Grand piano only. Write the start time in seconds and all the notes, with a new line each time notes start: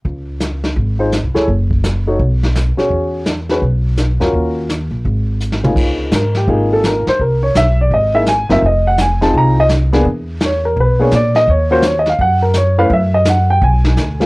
0.99 D#4 F4 G#4 C5
1.34 E4 G#4 A4 C#5
2.07 D#4 F#4 A4 C#5
2.77 C#4 F#4 G#4 C#5
3.50 C#4 F#4 G#4 B4
4.20 C#4 F4 F#4 A#4
5.64 C#3 A#3 D#4 F4 G#4
6.15 A#4
6.37 G4
6.48 A#3 D#4 F4 G#4
6.73 A4
6.86 A#4
7.09 C5
7.21 A#4
7.43 C#5
7.57 E5
7.81 D5
7.94 D#5
8.14 A#3 D#4 E4 G#4 E5
8.28 G#5
8.49 C4 D#4 F4 A#4 E5
8.66 D#5
8.87 F#5
9.01 G#5
9.21 C4 D#4 F4 G#4 A5
9.37 A#5
9.60 D#5
9.92 A#3 B3 D4 G#4
10.45 C#5
10.65 A#4
10.80 B4
10.99 A#3 B3 D4 G#4 C#5
11.15 D5
11.36 D#5
11.50 C#5
11.71 A#3 C#4 F4 F#4 C5
11.86 C#5
11.99 D#5
12.09 F5
12.21 F#5
12.42 A#4
12.57 C#5
12.78 A3 C#4 E4 B4 F5
12.93 E5
13.14 D#5
13.30 F#5
13.50 G5
13.64 G#5
14.20 G#3 A#3 D#4 F4